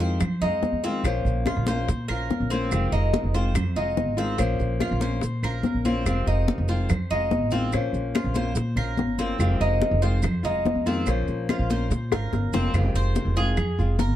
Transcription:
Already playing: F2
0.00 D#3 G#3 C4 F4 C5, high bongo, high conga, maracas
0.20 F3, muted nylon-string guitar stroke, high bongo, high conga, low conga, claves, maracas
0.41 F2 G#3 C4 D#4 F4, high conga, low conga, maracas
0.63 high bongo, low bongo, high conga, maracas
0.72 F2
0.84 D#3 G#3 C4 F4, high bongo, maracas
1.04 A#1 F3 A#3 C#4 F4 C5, high bongo, high conga, claves, maracas
1.25 A#1, high bongo, high conga, maracas
1.46 F4, high bongo, high conga, claves, maracas
1.57 A#1
1.67 A#3 C#4 F4 C5, high bongo, high conga, maracas
1.88 A#2, muted nylon-string guitar stroke, high bongo, high conga, maracas
2.08 A#1 C#4 F4 A#4 C5, high conga, claves, maracas
2.30 high bongo, low bongo, high conga, maracas
2.40 A#1
2.50 A#3 C4 C#4 F4 C5, high bongo, maracas
2.71 F1 C3 D#3 G#3 C4 F4, high bongo, high conga, claves, maracas
2.92 F1 D#4, high bongo, high conga, maracas
3.13 high bongo, high conga, maracas
3.24 F1
3.34 D#3 G#3 C4 F4 C5, high bongo, high conga, maracas
3.54 F2, muted nylon-string guitar stroke, high bongo, high conga, low conga, claves, maracas
3.76 F1 G#3 C4 D#4 F4, high conga, maracas
3.97 high bongo, low bongo, high conga, maracas
4.06 G#1
4.17 D#3 G#3 C4 F4, high bongo, maracas
4.38 A#1 F3 A#3 C#4 F4 C5, high bongo, high conga, claves, maracas
4.59 A#1, high bongo, high conga, maracas
4.80 F4, high bongo, high conga, claves, maracas
4.91 A#1
5.01 A#3 C#4 F4 C5, high bongo, high conga, maracas
5.21 A#2, muted nylon-string guitar stroke, high bongo, high conga, maracas
5.43 A#1 C#4 F4 A#4 C5, high conga, claves, maracas
5.63 high bongo, low bongo, high conga, maracas
5.74 A#1
5.85 A#3 C4 C#4 F4 C5, high bongo, high conga, maracas
6.06 F1 C3 D#3 G#3 C4 F4, high bongo, high conga, claves, maracas
6.26 F1 D#4, high bongo, high conga, maracas
6.48 high bongo, high conga, maracas
6.58 F1
6.68 D#3 G#3 C4 F4 C5, high bongo, high conga, maracas
6.89 F2, muted nylon-string guitar stroke, high bongo, high conga, low conga, claves, maracas
7.10 F1 G#3 C4 D#4 F4, high conga, maracas
7.31 high bongo, low bongo, high conga, maracas
7.43 A1
7.51 D#3 G#3 C4 F4, high bongo, high conga, maracas
7.72 A#1 F3 A#3 C#4 F4 C5, high bongo, high conga, claves, maracas
7.93 A#1, high bongo, high conga, maracas
8.15 F4, high bongo, high conga, claves, maracas
8.24 A#1
8.34 A#3 C#4 F4 C5, high bongo, high conga, maracas
8.55 A#2, muted nylon-string guitar stroke, high bongo, high conga, maracas
8.76 A#1 C#4 F4 A#4 C5, high conga, claves, maracas
8.97 high bongo, low bongo, high conga, maracas
9.07 G1
9.18 A#3 C4 C#4 F4 C5, high bongo, high conga, maracas
9.38 F1 C3 D#3 G#3 C4 F4, high bongo, high conga, claves, maracas
9.61 F1 D#4, high bongo, high conga, maracas
9.81 high bongo, high conga, maracas
9.91 F1
10.02 D#3 G#3 C4 F4 C5, high bongo, high conga, maracas
10.22 F2, muted nylon-string guitar stroke, high bongo, high conga, low conga, claves, maracas
10.43 F1 G#3 C4 D#4 F4, high conga, low conga, maracas
10.65 high bongo, low bongo, high conga, maracas
10.75 F2
10.86 D#3 G#3 C4 F4, high bongo, high conga, maracas
11.06 A#1 F3 A#3 C#4 F4 C5, high bongo, high conga, claves, maracas
11.28 A#1, high bongo, high conga, maracas
11.49 F4, high bongo, high conga, claves, maracas
11.59 A#1
11.70 A#3 C#4 F4 C5, high bongo, high conga, maracas
11.90 A#2, muted nylon-string guitar stroke, high bongo, high conga, maracas
12.11 G#1 C#4 F4 A#4 C5, high bongo, high conga, claves, maracas
12.33 G1, high bongo, high conga, maracas
12.53 F1 A#3 C4 C#4 F4 C5, low bongo, high conga, maracas
12.74 F1 C3 D#3 G#3 C4 F4, high bongo, high conga, claves, maracas
12.94 F1 C5, high conga, maracas
13.15 high bongo, high conga, maracas
13.25 F1
13.36 D#3 G#3 C4 F4 G#4, maracas
13.57 F2, muted nylon-string guitar stroke, high bongo, high conga, low conga, claves, maracas
13.78 F1 G#3 C4 F4, high conga, maracas
13.99 A#4, high bongo, low bongo, high conga, maracas
14.10 G#1

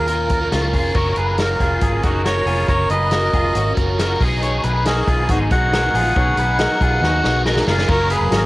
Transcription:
Already playing: D#2 A#4
0.08 A#3 C#4 F4 A#4, closed hi-hat
0.29 kick, closed hi-hat
0.41 C#3 A#3 C#4 F4 A#4
0.52 C#2 C#4 F4, snare, closed hi-hat
0.63 C#4 F4 A#4
0.73 F1 F4 G#4, kick, open hi-hat
0.95 F#1 F#3 C#4 F4 A#4 C#5, kick, crash
1.16 F#1 G#4 B4, closed hi-hat
1.27 C#4 F4 A#4
1.38 F#3 C#4 F4 F#4 A#4, snare, closed hi-hat
1.60 F1 F4 G#4, kick, closed hi-hat
1.81 G#1 F4 G#4, kick, closed hi-hat
2.02 F#1 F#3 C#4 D#4 F4 F#4 A#4, kick, closed hi-hat
2.25 F#3 C#4 F4 F#4 A#4 C#5, snare, closed hi-hat
2.45 F1 F#3 C#4 F4 G#4 A#4, open hi-hat
2.67 F#1 F#3 C#4 F4 A#4 C#5, kick, closed hi-hat
2.90 F#1 G#4 B4 D#5, closed hi-hat
3.00 C#4 F4 A#4
3.11 F#3 C#4 F4 F#4 A#4, snare, closed hi-hat
3.33 F1 F4 G#4, kick, closed hi-hat
3.55 G#1 C#4 F#4, closed hi-hat
3.75 F#1 F#3 C#4 F4 A#4, kick, closed hi-hat
3.98 F#3 C#4 F4 F#4 A#4, snare, closed hi-hat
4.19 B1 F#3 B3 D#4 G#4, kick, open hi-hat
4.41 B2 D#3 F#3 B3 D#4 G#4 B4 C#5, closed hi-hat
4.63 B1 G#4 B4, closed hi-hat
4.74 F#3 B3 D#4 G#4
4.85 F#3 B3 D#4 F#4 G#4 A#4, snare, closed hi-hat
5.07 B1 F4 G#4, kick, closed hi-hat
5.29 G#1 D#4 F#4 G#4 B4, kick, closed hi-hat
5.50 B1 F#3 B3 D#4 F#4 G#4 F#5, kick, closed hi-hat
5.71 F#3 B3 D#4 F#4 G#4 A#4 B4, snare, closed hi-hat
5.93 A#1 F#3 B3 D#4 F4 G#4, open hi-hat
6.15 B1 B2 D#3 F#3 B3 D#4 G#4 B4 C#5, kick, closed hi-hat
6.37 B1 G#4 B4, closed hi-hat
6.47 F#3 B3 D#4 G#4
6.57 F#3 B3 D#4 F#4 G#4 A#4, snare, closed hi-hat
6.81 B1 F4 G#4 B5, kick, closed hi-hat
7.01 D#2 D#4 F#4 G#4 B4 G#5, snare
7.23 B1 F#3 B3 D#4 G#4, snare
7.45 F#3 B3 D#4 F#4 G#4 A#4 F5, snare
7.57 snare
7.66 F#1 F#3 C#4 F4 F#4 G#4 A#4, snare
7.78 snare
7.88 F#1 F#3 A#3 C#4 F4 F#4 A#4 C#5, kick, crash
8.10 G#4 B4, closed hi-hat
8.20 F1
8.31 G#1 F4 F#4 A#4, snare, closed hi-hat

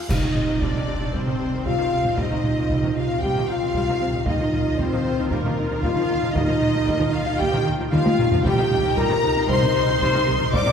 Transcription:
0.08 C2 C3 G3 C4 D#4 D#5, concert bass drum, taiko, crash, impact
0.22 C3 D#3, taiko low-mid
0.35 C2 C3, taiko low-mid
0.48 C3 D#3
0.60 C2 C3 G3 D4 D5, taiko
0.74 C3 D#3, taiko low-mid
0.87 C2 C3
1.00 C3 D#3
1.13 C2 C3 G3 C4 C5, taiko
1.27 C3 D#3, taiko low-mid
1.39 C2 C3
1.53 C3 D#3
1.65 C2 C3 G3 F4 F5, taiko
1.78 C3 D#3
1.92 C2 C3
2.04 C3 D#3, taiko low-mid
2.16 C2 C3 G3 D#4 D#5, taiko
2.31 C3 D#3, taiko low-mid
2.43 C2 C3, taiko low-mid
2.58 C3 D#3
2.70 C2 C3 G3, taiko
2.83 C3 D#3, taiko low-mid
2.95 C2 C3 F4 F5
3.11 C3 D#3
3.20 C2 C3 G3 G4 G5, taiko
3.35 C3 D#3, taiko low-mid
3.47 C2 C3 F4 F5
3.62 C3 D#3
3.74 C2 C3 G3, taiko
3.88 C3 D#3
4.01 C2 C3
4.13 C3 D#3, taiko low-mid
4.26 D#2 D#3 G3 D#4 F4 D#5, taiko
4.39 D#3 F3, taiko low-mid
4.53 D#2 D#3, taiko low-mid
4.67 D#3 F3
4.77 D#2 D#3 C4 C5, taiko
4.81 G3
4.92 D#3 F3, taiko low-mid
5.04 D#2 D#3
5.18 D#3 F3
5.29 D#2 D#3 G3 A#3 A#4, taiko
5.44 D#3 F3, taiko low-mid
5.56 D#2 D#3
5.71 D#3 F3
5.81 D#2 D#3 G3 F4 F5, taiko
5.96 D#3 F3
6.08 D#2 D#3
6.22 D#3 F3, taiko low-mid
6.33 D#2 D#3 D#4 D#5, taiko
6.37 G3
6.47 D#3 F3, taiko low-mid
6.61 D#2 D#3, taiko low-mid
6.74 D#3 F3
6.86 D#2 D#3 G3, taiko
6.98 D#3 F3, taiko low-mid
7.11 D#2 D#3 F4 F5
7.25 D#3 F3
7.38 D#2 D#3 G3 G4 G5, taiko
7.52 D#3 F3, taiko low-mid
7.65 D#2 D#3
7.79 D#3 F3
7.91 D#2 D#3 G3 F4 F5, taiko mid
8.05 D#3 F3, taiko high
8.18 D#2 D#3, taiko low-mid
8.32 D#3 F3, taiko low
8.44 C2 C3 G3 D#4 G4 G5, taiko
8.58 C3 D#3, taiko low-mid
8.70 C2 C3, taiko low-mid
8.84 C3 D#3
8.96 C2 C3 G3 A#4 A#5, taiko
9.10 C3 D#3, taiko low-mid
9.22 C2 C3
9.35 C3 D#3
9.47 C2 C3 G3 C5 C6, taiko
9.60 C3 D#3, taiko low-mid
9.73 C2 C3
9.88 C3 D#3
10.00 C2 C3 G3, taiko
10.13 C3 D#3
10.26 C2 C3
10.39 C3 D#3, taiko low-mid
10.51 C2 C3 G3 D5 D6, taiko
10.66 C3 D#3, taiko low-mid

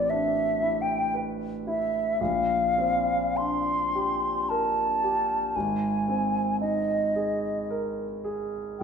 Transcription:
Already playing: A1 C4 D5
0.10 D4 E5
0.63 E4
0.82 G5
1.14 B4
1.67 E4 E5
2.21 A#1 F5
2.78 C4
3.37 D4 C6
3.95 G4
4.49 A#4 A5
5.03 G4
5.56 G#1 G#5
6.08 C4
6.61 D#4 D#5
7.16 G#4
7.70 A#4
8.24 G#4
8.80 G5

